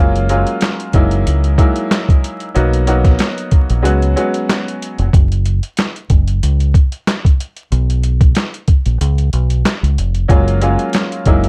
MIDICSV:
0, 0, Header, 1, 4, 480
1, 0, Start_track
1, 0, Key_signature, 6, "major"
1, 0, Tempo, 645161
1, 1898, Time_signature, 4, 2, 24, 8
1, 8546, End_track
2, 0, Start_track
2, 0, Title_t, "Upright piano"
2, 0, Program_c, 0, 0
2, 0, Note_on_c, 0, 54, 91
2, 0, Note_on_c, 0, 56, 78
2, 0, Note_on_c, 0, 58, 92
2, 0, Note_on_c, 0, 61, 76
2, 0, Note_on_c, 0, 65, 107
2, 197, Note_off_c, 0, 54, 0
2, 198, Note_off_c, 0, 56, 0
2, 200, Note_off_c, 0, 58, 0
2, 201, Note_off_c, 0, 61, 0
2, 203, Note_off_c, 0, 65, 0
2, 218, Note_on_c, 0, 54, 97
2, 222, Note_on_c, 0, 56, 83
2, 225, Note_on_c, 0, 58, 82
2, 228, Note_on_c, 0, 61, 86
2, 232, Note_on_c, 0, 65, 94
2, 690, Note_off_c, 0, 54, 0
2, 693, Note_off_c, 0, 56, 0
2, 696, Note_off_c, 0, 58, 0
2, 701, Note_on_c, 0, 54, 84
2, 703, Note_off_c, 0, 61, 0
2, 704, Note_on_c, 0, 56, 78
2, 705, Note_off_c, 0, 65, 0
2, 707, Note_on_c, 0, 58, 83
2, 710, Note_on_c, 0, 63, 82
2, 713, Note_on_c, 0, 64, 101
2, 1144, Note_off_c, 0, 54, 0
2, 1146, Note_off_c, 0, 56, 0
2, 1148, Note_off_c, 0, 58, 0
2, 1149, Note_off_c, 0, 63, 0
2, 1150, Note_off_c, 0, 64, 0
2, 1173, Note_on_c, 0, 54, 92
2, 1176, Note_on_c, 0, 56, 85
2, 1179, Note_on_c, 0, 58, 87
2, 1183, Note_on_c, 0, 63, 81
2, 1186, Note_on_c, 0, 64, 104
2, 1843, Note_off_c, 0, 54, 0
2, 1844, Note_off_c, 0, 56, 0
2, 1846, Note_off_c, 0, 58, 0
2, 1848, Note_off_c, 0, 63, 0
2, 1849, Note_off_c, 0, 64, 0
2, 1893, Note_on_c, 0, 54, 86
2, 1897, Note_on_c, 0, 58, 83
2, 1900, Note_on_c, 0, 59, 82
2, 1904, Note_on_c, 0, 63, 89
2, 1907, Note_on_c, 0, 66, 101
2, 2118, Note_off_c, 0, 54, 0
2, 2120, Note_off_c, 0, 58, 0
2, 2122, Note_off_c, 0, 59, 0
2, 2124, Note_off_c, 0, 63, 0
2, 2125, Note_off_c, 0, 66, 0
2, 2135, Note_on_c, 0, 54, 90
2, 2138, Note_on_c, 0, 58, 87
2, 2141, Note_on_c, 0, 59, 83
2, 2144, Note_on_c, 0, 63, 81
2, 2148, Note_on_c, 0, 66, 105
2, 2833, Note_off_c, 0, 54, 0
2, 2839, Note_off_c, 0, 59, 0
2, 2844, Note_on_c, 0, 54, 91
2, 2846, Note_off_c, 0, 66, 0
2, 2847, Note_on_c, 0, 56, 85
2, 2851, Note_on_c, 0, 59, 82
2, 2854, Note_on_c, 0, 61, 87
2, 2858, Note_off_c, 0, 58, 0
2, 2858, Note_on_c, 0, 66, 98
2, 2861, Note_off_c, 0, 63, 0
2, 3074, Note_off_c, 0, 54, 0
2, 3075, Note_off_c, 0, 56, 0
2, 3077, Note_off_c, 0, 59, 0
2, 3078, Note_off_c, 0, 61, 0
2, 3080, Note_off_c, 0, 66, 0
2, 3095, Note_on_c, 0, 54, 92
2, 3099, Note_on_c, 0, 56, 76
2, 3102, Note_on_c, 0, 59, 80
2, 3104, Note_on_c, 0, 61, 86
2, 3109, Note_on_c, 0, 66, 101
2, 3764, Note_off_c, 0, 54, 0
2, 3766, Note_off_c, 0, 56, 0
2, 3767, Note_off_c, 0, 59, 0
2, 3768, Note_off_c, 0, 61, 0
2, 3771, Note_off_c, 0, 66, 0
2, 7651, Note_on_c, 0, 54, 95
2, 7654, Note_on_c, 0, 56, 82
2, 7657, Note_on_c, 0, 58, 89
2, 7660, Note_on_c, 0, 61, 77
2, 7663, Note_on_c, 0, 65, 106
2, 7877, Note_off_c, 0, 54, 0
2, 7879, Note_off_c, 0, 56, 0
2, 7880, Note_off_c, 0, 58, 0
2, 7881, Note_off_c, 0, 61, 0
2, 7883, Note_off_c, 0, 65, 0
2, 7898, Note_on_c, 0, 54, 98
2, 7901, Note_on_c, 0, 56, 84
2, 7904, Note_on_c, 0, 58, 80
2, 7907, Note_on_c, 0, 61, 86
2, 7911, Note_on_c, 0, 65, 96
2, 8369, Note_off_c, 0, 54, 0
2, 8371, Note_off_c, 0, 56, 0
2, 8375, Note_off_c, 0, 58, 0
2, 8380, Note_on_c, 0, 54, 87
2, 8383, Note_off_c, 0, 61, 0
2, 8383, Note_on_c, 0, 56, 78
2, 8385, Note_off_c, 0, 65, 0
2, 8387, Note_on_c, 0, 58, 86
2, 8389, Note_on_c, 0, 63, 82
2, 8393, Note_on_c, 0, 64, 104
2, 8546, Note_off_c, 0, 54, 0
2, 8546, Note_off_c, 0, 56, 0
2, 8546, Note_off_c, 0, 58, 0
2, 8546, Note_off_c, 0, 63, 0
2, 8546, Note_off_c, 0, 64, 0
2, 8546, End_track
3, 0, Start_track
3, 0, Title_t, "Fingered electric bass"
3, 0, Program_c, 1, 33
3, 0, Note_on_c, 1, 30, 110
3, 320, Note_off_c, 1, 30, 0
3, 700, Note_on_c, 1, 30, 104
3, 916, Note_off_c, 1, 30, 0
3, 944, Note_on_c, 1, 37, 93
3, 1158, Note_off_c, 1, 37, 0
3, 1904, Note_on_c, 1, 35, 100
3, 2351, Note_off_c, 1, 35, 0
3, 2753, Note_on_c, 1, 34, 83
3, 2863, Note_off_c, 1, 34, 0
3, 2863, Note_on_c, 1, 37, 110
3, 3078, Note_off_c, 1, 37, 0
3, 3713, Note_on_c, 1, 29, 90
3, 3810, Note_off_c, 1, 29, 0
3, 3821, Note_on_c, 1, 30, 101
3, 4160, Note_off_c, 1, 30, 0
3, 4541, Note_on_c, 1, 30, 98
3, 4757, Note_off_c, 1, 30, 0
3, 4784, Note_on_c, 1, 37, 90
3, 4998, Note_off_c, 1, 37, 0
3, 5743, Note_on_c, 1, 35, 111
3, 6191, Note_off_c, 1, 35, 0
3, 6592, Note_on_c, 1, 34, 81
3, 6690, Note_off_c, 1, 34, 0
3, 6704, Note_on_c, 1, 37, 105
3, 6918, Note_off_c, 1, 37, 0
3, 6943, Note_on_c, 1, 35, 85
3, 7158, Note_off_c, 1, 35, 0
3, 7312, Note_on_c, 1, 37, 87
3, 7410, Note_off_c, 1, 37, 0
3, 7422, Note_on_c, 1, 29, 91
3, 7637, Note_off_c, 1, 29, 0
3, 7662, Note_on_c, 1, 30, 112
3, 8000, Note_off_c, 1, 30, 0
3, 8380, Note_on_c, 1, 30, 104
3, 8546, Note_off_c, 1, 30, 0
3, 8546, End_track
4, 0, Start_track
4, 0, Title_t, "Drums"
4, 116, Note_on_c, 9, 42, 54
4, 190, Note_off_c, 9, 42, 0
4, 218, Note_on_c, 9, 42, 77
4, 292, Note_off_c, 9, 42, 0
4, 347, Note_on_c, 9, 42, 54
4, 421, Note_off_c, 9, 42, 0
4, 452, Note_on_c, 9, 42, 84
4, 463, Note_on_c, 9, 38, 109
4, 471, Note_on_c, 9, 39, 89
4, 526, Note_off_c, 9, 42, 0
4, 537, Note_off_c, 9, 38, 0
4, 545, Note_off_c, 9, 39, 0
4, 594, Note_on_c, 9, 42, 53
4, 668, Note_off_c, 9, 42, 0
4, 694, Note_on_c, 9, 42, 70
4, 697, Note_on_c, 9, 36, 90
4, 769, Note_off_c, 9, 42, 0
4, 772, Note_off_c, 9, 36, 0
4, 827, Note_on_c, 9, 42, 52
4, 902, Note_off_c, 9, 42, 0
4, 944, Note_on_c, 9, 42, 97
4, 1018, Note_off_c, 9, 42, 0
4, 1071, Note_on_c, 9, 42, 46
4, 1146, Note_off_c, 9, 42, 0
4, 1177, Note_on_c, 9, 36, 93
4, 1181, Note_on_c, 9, 42, 71
4, 1251, Note_off_c, 9, 36, 0
4, 1255, Note_off_c, 9, 42, 0
4, 1308, Note_on_c, 9, 42, 58
4, 1382, Note_off_c, 9, 42, 0
4, 1422, Note_on_c, 9, 38, 114
4, 1427, Note_on_c, 9, 42, 87
4, 1430, Note_on_c, 9, 39, 88
4, 1496, Note_off_c, 9, 38, 0
4, 1501, Note_off_c, 9, 42, 0
4, 1505, Note_off_c, 9, 39, 0
4, 1552, Note_on_c, 9, 36, 97
4, 1562, Note_on_c, 9, 42, 51
4, 1627, Note_off_c, 9, 36, 0
4, 1636, Note_off_c, 9, 42, 0
4, 1668, Note_on_c, 9, 42, 76
4, 1742, Note_off_c, 9, 42, 0
4, 1788, Note_on_c, 9, 42, 42
4, 1862, Note_off_c, 9, 42, 0
4, 1901, Note_on_c, 9, 42, 83
4, 1976, Note_off_c, 9, 42, 0
4, 2035, Note_on_c, 9, 42, 55
4, 2109, Note_off_c, 9, 42, 0
4, 2137, Note_on_c, 9, 42, 80
4, 2212, Note_off_c, 9, 42, 0
4, 2266, Note_on_c, 9, 36, 93
4, 2267, Note_on_c, 9, 42, 52
4, 2270, Note_on_c, 9, 38, 37
4, 2340, Note_off_c, 9, 36, 0
4, 2342, Note_off_c, 9, 42, 0
4, 2345, Note_off_c, 9, 38, 0
4, 2372, Note_on_c, 9, 42, 89
4, 2383, Note_on_c, 9, 38, 108
4, 2391, Note_on_c, 9, 39, 85
4, 2446, Note_off_c, 9, 42, 0
4, 2457, Note_off_c, 9, 38, 0
4, 2466, Note_off_c, 9, 39, 0
4, 2514, Note_on_c, 9, 42, 52
4, 2588, Note_off_c, 9, 42, 0
4, 2615, Note_on_c, 9, 42, 68
4, 2618, Note_on_c, 9, 36, 87
4, 2689, Note_off_c, 9, 42, 0
4, 2692, Note_off_c, 9, 36, 0
4, 2750, Note_on_c, 9, 42, 53
4, 2824, Note_off_c, 9, 42, 0
4, 2866, Note_on_c, 9, 42, 96
4, 2940, Note_off_c, 9, 42, 0
4, 2993, Note_on_c, 9, 42, 47
4, 3068, Note_off_c, 9, 42, 0
4, 3102, Note_on_c, 9, 42, 72
4, 3176, Note_off_c, 9, 42, 0
4, 3229, Note_on_c, 9, 42, 57
4, 3304, Note_off_c, 9, 42, 0
4, 3344, Note_on_c, 9, 38, 114
4, 3349, Note_on_c, 9, 42, 85
4, 3352, Note_on_c, 9, 39, 91
4, 3418, Note_off_c, 9, 38, 0
4, 3423, Note_off_c, 9, 42, 0
4, 3427, Note_off_c, 9, 39, 0
4, 3484, Note_on_c, 9, 42, 55
4, 3559, Note_off_c, 9, 42, 0
4, 3589, Note_on_c, 9, 42, 80
4, 3664, Note_off_c, 9, 42, 0
4, 3709, Note_on_c, 9, 42, 44
4, 3784, Note_off_c, 9, 42, 0
4, 3820, Note_on_c, 9, 36, 119
4, 3824, Note_on_c, 9, 42, 87
4, 3894, Note_off_c, 9, 36, 0
4, 3898, Note_off_c, 9, 42, 0
4, 3957, Note_on_c, 9, 42, 52
4, 4031, Note_off_c, 9, 42, 0
4, 4059, Note_on_c, 9, 42, 75
4, 4133, Note_off_c, 9, 42, 0
4, 4189, Note_on_c, 9, 42, 55
4, 4263, Note_off_c, 9, 42, 0
4, 4293, Note_on_c, 9, 42, 92
4, 4304, Note_on_c, 9, 38, 107
4, 4313, Note_on_c, 9, 39, 89
4, 4368, Note_off_c, 9, 42, 0
4, 4379, Note_off_c, 9, 38, 0
4, 4387, Note_off_c, 9, 39, 0
4, 4435, Note_on_c, 9, 42, 51
4, 4509, Note_off_c, 9, 42, 0
4, 4536, Note_on_c, 9, 42, 68
4, 4538, Note_on_c, 9, 36, 89
4, 4610, Note_off_c, 9, 42, 0
4, 4612, Note_off_c, 9, 36, 0
4, 4669, Note_on_c, 9, 42, 52
4, 4743, Note_off_c, 9, 42, 0
4, 4785, Note_on_c, 9, 42, 97
4, 4859, Note_off_c, 9, 42, 0
4, 4913, Note_on_c, 9, 42, 45
4, 4987, Note_off_c, 9, 42, 0
4, 5017, Note_on_c, 9, 36, 95
4, 5021, Note_on_c, 9, 42, 70
4, 5091, Note_off_c, 9, 36, 0
4, 5096, Note_off_c, 9, 42, 0
4, 5149, Note_on_c, 9, 42, 56
4, 5224, Note_off_c, 9, 42, 0
4, 5263, Note_on_c, 9, 38, 112
4, 5268, Note_on_c, 9, 42, 82
4, 5271, Note_on_c, 9, 39, 92
4, 5337, Note_off_c, 9, 38, 0
4, 5342, Note_off_c, 9, 42, 0
4, 5346, Note_off_c, 9, 39, 0
4, 5393, Note_on_c, 9, 36, 94
4, 5403, Note_on_c, 9, 42, 54
4, 5467, Note_off_c, 9, 36, 0
4, 5478, Note_off_c, 9, 42, 0
4, 5509, Note_on_c, 9, 42, 80
4, 5583, Note_off_c, 9, 42, 0
4, 5628, Note_on_c, 9, 42, 43
4, 5703, Note_off_c, 9, 42, 0
4, 5743, Note_on_c, 9, 42, 84
4, 5817, Note_off_c, 9, 42, 0
4, 5876, Note_on_c, 9, 42, 55
4, 5951, Note_off_c, 9, 42, 0
4, 5978, Note_on_c, 9, 42, 78
4, 6052, Note_off_c, 9, 42, 0
4, 6106, Note_on_c, 9, 36, 96
4, 6107, Note_on_c, 9, 42, 53
4, 6181, Note_off_c, 9, 36, 0
4, 6182, Note_off_c, 9, 42, 0
4, 6213, Note_on_c, 9, 42, 88
4, 6224, Note_on_c, 9, 38, 106
4, 6232, Note_on_c, 9, 39, 88
4, 6287, Note_off_c, 9, 42, 0
4, 6298, Note_off_c, 9, 38, 0
4, 6307, Note_off_c, 9, 39, 0
4, 6355, Note_on_c, 9, 42, 54
4, 6429, Note_off_c, 9, 42, 0
4, 6455, Note_on_c, 9, 42, 71
4, 6458, Note_on_c, 9, 36, 89
4, 6530, Note_off_c, 9, 42, 0
4, 6532, Note_off_c, 9, 36, 0
4, 6589, Note_on_c, 9, 42, 53
4, 6664, Note_off_c, 9, 42, 0
4, 6704, Note_on_c, 9, 42, 97
4, 6779, Note_off_c, 9, 42, 0
4, 6832, Note_on_c, 9, 42, 45
4, 6906, Note_off_c, 9, 42, 0
4, 6941, Note_on_c, 9, 42, 73
4, 7015, Note_off_c, 9, 42, 0
4, 7069, Note_on_c, 9, 42, 56
4, 7143, Note_off_c, 9, 42, 0
4, 7182, Note_on_c, 9, 38, 114
4, 7186, Note_on_c, 9, 42, 85
4, 7190, Note_on_c, 9, 39, 90
4, 7256, Note_off_c, 9, 38, 0
4, 7261, Note_off_c, 9, 42, 0
4, 7264, Note_off_c, 9, 39, 0
4, 7322, Note_on_c, 9, 42, 53
4, 7396, Note_off_c, 9, 42, 0
4, 7427, Note_on_c, 9, 42, 78
4, 7502, Note_off_c, 9, 42, 0
4, 7548, Note_on_c, 9, 42, 43
4, 7623, Note_off_c, 9, 42, 0
4, 7659, Note_on_c, 9, 36, 118
4, 7661, Note_on_c, 9, 42, 83
4, 7733, Note_off_c, 9, 36, 0
4, 7736, Note_off_c, 9, 42, 0
4, 7796, Note_on_c, 9, 42, 52
4, 7870, Note_off_c, 9, 42, 0
4, 7898, Note_on_c, 9, 42, 78
4, 7972, Note_off_c, 9, 42, 0
4, 8028, Note_on_c, 9, 42, 52
4, 8102, Note_off_c, 9, 42, 0
4, 8132, Note_on_c, 9, 42, 91
4, 8143, Note_on_c, 9, 38, 104
4, 8152, Note_on_c, 9, 39, 85
4, 8207, Note_off_c, 9, 42, 0
4, 8218, Note_off_c, 9, 38, 0
4, 8226, Note_off_c, 9, 39, 0
4, 8274, Note_on_c, 9, 42, 54
4, 8348, Note_off_c, 9, 42, 0
4, 8374, Note_on_c, 9, 42, 69
4, 8377, Note_on_c, 9, 36, 90
4, 8448, Note_off_c, 9, 42, 0
4, 8451, Note_off_c, 9, 36, 0
4, 8509, Note_on_c, 9, 42, 52
4, 8546, Note_off_c, 9, 42, 0
4, 8546, End_track
0, 0, End_of_file